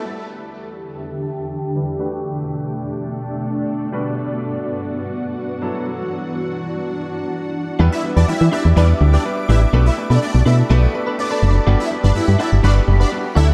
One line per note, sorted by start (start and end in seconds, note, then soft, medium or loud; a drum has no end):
0.05 1.97 E2 medium
0.05 1.97 D3 medium
0.05 1.71 G3 medium
0.05 1.72 D4 medium
0.05 1.72 E4 medium
0.05 1.97 G4 medium
0.05 1.72 B4 medium
1.75 1.99 G3 medium
1.75 1.97 D4 soft
1.75 1.99 E4 soft
1.75 1.98 B4 medium
1.99 3.91 B2 medium
1.99 3.89 A3 medium
1.99 3.91 A3 medium
1.99 3.89 D4 medium
1.99 3.91 D4 medium
1.99 3.89 F#4 medium
1.99 3.89 B4 medium
3.92 5.60 G2 medium
3.92 5.59 G3 medium
3.92 5.60 B3 medium
3.92 5.59 D4 medium
3.92 7.76 F#4 medium
3.92 5.59 F#4 medium
3.92 5.59 B4 medium
5.62 7.78 E3 medium
5.62 7.52 F#3 medium
5.62 7.78 D4 medium
5.62 7.52 D4 medium
5.62 7.52 E4 medium
5.62 7.52 A4 medium
7.79 7.89 E2 loud
7.79 8.00 G3 loud
7.79 8.00 B3 medium
7.79 7.93 D4 medium
7.79 8.00 D4 medium
7.79 8.00 E4 medium
7.79 9.72 G4 medium
7.79 7.92 G4 medium
7.79 8.00 B4 loud
7.79 7.91 B4 loud
7.79 9.71 E5 medium
7.79 9.71 D6 loud
7.92 8.01 E4 medium
7.92 8.00 E5 medium
7.92 muted clean electric guitar stroke soft
8.04 8.24 G3 medium
8.04 8.24 B3 medium
8.04 8.24 D4 medium
8.04 8.24 E4 medium
8.04 8.24 B4 medium
8.04 muted clean electric guitar stroke soft
8.16 8.25 E2 medium
8.16 8.25 D4 medium
8.16 8.27 D4 medium
8.16 8.27 G4 medium
8.16 8.26 B4 medium
8.16 8.25 D5 medium
8.28 8.33 E3 soft
8.28 8.48 G3 medium
8.28 8.48 B3 medium
8.28 8.48 D4 medium
8.28 8.48 E4 medium
8.28 8.46 E4 medium
8.28 8.48 G4 medium
8.28 8.45 E5 medium
8.41 8.49 E3 medium
8.41 muted clean electric guitar stroke medium
8.52 8.72 G3 medium
8.52 8.72 B3 medium
8.52 8.66 D4 medium
8.52 8.72 D4 medium
8.52 8.72 E4 medium
8.52 8.62 E4 medium
8.52 8.65 G4 loud
8.52 8.64 B4 loud
8.52 8.72 D5 medium
8.52 8.62 E5 medium
8.65 8.73 E2 medium
8.65 muted clean electric guitar stroke medium
8.76 8.93 E2 medium
8.76 8.97 G3 loud
8.76 8.97 B3 loud
8.76 8.90 D4 medium
8.76 8.97 D4 medium
8.76 8.86 D4 medium
8.76 8.97 E4 medium
8.76 8.89 G4 medium
8.76 8.97 B4 loud
8.76 8.88 B4 loud
8.76 8.86 D5 medium
8.89 muted clean electric guitar stroke soft
9.01 9.18 D2 loud
9.01 9.21 G3 medium
9.01 9.21 B3 medium
9.01 9.21 D4 medium
9.01 9.21 E4 medium
9.01 9.21 G4 medium
9.01 muted clean electric guitar stroke soft
9.13 9.22 D4 medium
9.13 9.24 D4 medium
9.13 9.23 G4 medium
9.13 9.23 B4 medium
9.13 9.22 D5 medium
9.25 9.45 G3 medium
9.25 9.45 B3 medium
9.25 9.45 D4 medium
9.25 9.45 E4 medium
9.25 9.45 B4 medium
9.25 muted clean electric guitar stroke medium
9.38 muted clean electric guitar stroke medium
9.49 9.66 A1 medium
9.49 9.69 G3 medium
9.49 9.69 B3 medium
9.49 9.63 D4 medium
9.49 9.69 D4 medium
9.49 9.69 E4 medium
9.49 9.59 E4 medium
9.49 9.62 G4 loud
9.49 9.69 B4 medium
9.49 9.60 B4 medium
9.49 9.58 E5 medium
9.62 muted clean electric guitar stroke medium
9.73 9.90 B1 loud
9.73 9.93 A3 loud
9.73 9.93 B3 loud
9.73 9.87 D4 loud
9.73 9.93 D4 medium
9.73 9.93 F#4 medium
9.73 11.65 A4 medium
9.73 9.86 A4 loud
9.73 9.94 B4 loud
9.73 9.85 B4 loud
9.73 11.65 D5 medium
9.73 13.33 B5 loud
9.86 9.95 E4 medium
9.86 9.94 E5 medium
9.86 muted clean electric guitar stroke soft
9.98 10.18 A3 medium
9.98 10.18 B3 medium
9.98 10.18 D4 medium
9.98 10.18 F#4 medium
9.98 10.18 B4 medium
9.98 muted clean electric guitar stroke soft
10.10 10.18 B2 loud
10.10 10.19 D4 medium
10.10 10.21 D4 medium
10.10 10.20 A4 medium
10.10 10.20 B4 medium
10.10 10.19 D5 medium
10.22 10.42 A3 medium
10.22 10.42 B3 medium
10.22 10.42 D4 medium
10.22 10.40 D4 medium
10.22 10.42 F#4 medium
10.22 10.42 B4 medium
10.22 10.39 D5 medium
10.35 10.42 B1 loud
10.35 muted clean electric guitar stroke medium
10.46 10.63 B2 loud
10.46 10.66 A3 medium
10.46 10.66 B3 medium
10.46 10.60 D4 medium
10.46 10.66 D4 medium
10.46 10.55 E4 medium
10.46 10.66 F#4 medium
10.46 10.66 A4 medium
10.46 10.58 A4 loud
10.46 10.57 B4 medium
10.46 10.55 E5 medium
10.59 muted clean electric guitar stroke soft
10.70 10.87 B1 loud
10.70 10.90 A3 loud
10.70 10.90 B3 loud
10.70 10.84 D4 loud
10.70 10.90 D4 loud
10.70 10.90 F#4 loud
10.70 10.83 A4 loud
10.70 10.90 B4 loud
10.70 10.82 B4 loud
10.94 11.14 A3 medium
10.94 11.14 B3 medium
10.94 11.14 D4 medium
10.94 11.14 F#4 medium
10.94 11.15 B4 loud
10.94 muted clean electric guitar stroke medium
11.07 11.17 D4 soft
11.07 11.17 A4 medium
11.07 11.17 B4 medium
11.18 11.38 A3 medium
11.18 11.38 B3 medium
11.18 11.39 D4 medium
11.18 11.54 D4 medium
11.18 11.39 F#4 medium
11.18 11.39 B4 medium
11.18 11.53 D5 medium
11.18 muted clean electric guitar stroke medium
11.31 11.41 D4 medium
11.31 11.42 A4 medium
11.31 11.42 B4 medium
11.42 11.59 F#1 loud
11.42 11.63 A3 medium
11.42 11.63 B3 medium
11.42 11.63 D4 medium
11.42 11.63 F#4 medium
11.42 11.63 A4 medium
11.42 muted clean electric guitar stroke soft
11.55 muted clean electric guitar stroke medium
11.66 11.76 G1 loud
11.66 11.87 G3 loud
11.66 11.87 B3 loud
11.66 11.81 D4 loud
11.66 11.87 D4 loud
11.66 11.87 F#4 medium
11.66 11.80 F#4 loud
11.66 13.35 G4 medium
11.66 11.87 B4 loud
11.66 11.78 B4 loud
11.66 13.54 F#5 medium
11.80 11.88 E4 medium
11.80 11.88 E5 medium
11.80 muted clean electric guitar stroke medium
11.91 12.11 G3 medium
11.91 12.11 B3 medium
11.91 12.11 D4 medium
11.91 12.11 F#4 medium
11.91 12.11 B4 medium
11.91 muted clean electric guitar stroke soft
12.03 12.12 G1 loud
12.03 12.12 D4 medium
12.03 12.14 D4 medium
12.03 12.14 F#4 medium
12.03 12.13 B4 medium
12.03 12.12 D5 medium
12.15 12.21 G2 medium
12.15 12.35 G3 medium
12.15 12.35 B3 medium
12.15 12.35 D4 medium
12.15 12.33 E4 medium
12.15 12.35 F#4 medium
12.15 12.35 B4 medium
12.15 12.32 E5 medium
12.28 12.36 G2 loud
12.28 muted clean electric guitar stroke medium
12.39 12.59 G3 medium
12.39 12.59 B3 medium
12.39 12.53 D4 medium
12.39 12.60 D4 medium
12.39 12.49 E4 medium
12.39 12.52 F#4 loud
12.39 12.60 F#4 medium
12.39 12.51 B4 loud
12.39 12.60 D5 medium
12.39 12.48 E5 medium
12.53 12.60 G1 medium
12.63 12.80 G1 loud
12.63 12.84 G3 loud
12.63 12.84 B3 loud
12.63 12.77 D4 medium
12.63 12.84 D4 medium
12.63 12.73 D4 medium
12.63 12.84 F#4 medium
12.63 12.76 F#4 medium
12.63 12.84 B4 loud
12.63 12.75 B4 medium
12.63 12.73 D5 medium
12.76 muted clean electric guitar stroke soft
12.87 13.05 F#1 loud
12.87 13.08 G3 medium
12.87 13.08 B3 medium
12.87 13.08 D4 medium
12.87 13.08 F#4 medium
12.87 13.08 B4 medium
12.87 muted clean electric guitar stroke medium
13.00 13.09 D4 medium
13.00 13.10 D4 medium
13.00 13.10 F#4 medium
13.00 13.10 B4 medium
13.00 13.09 D5 medium
13.12 13.32 G3 medium
13.12 13.32 B3 medium
13.12 13.32 D4 medium
13.12 13.32 F#4 medium
13.12 13.32 B4 medium
13.12 muted clean electric guitar stroke soft
13.24 muted clean electric guitar stroke medium
13.35 13.53 D2 loud
13.35 13.54 F#3 medium
13.35 13.54 A3 medium
13.35 13.54 D4 medium
13.35 13.54 E4 medium
13.35 13.46 E4 medium
13.35 13.50 F#4 loud
13.35 13.54 A4 medium
13.35 13.49 A4 loud
13.35 13.54 D5 medium
13.35 13.45 E5 medium
13.35 13.47 E5 loud
13.35 13.54 E6 medium
13.48 muted clean electric guitar stroke medium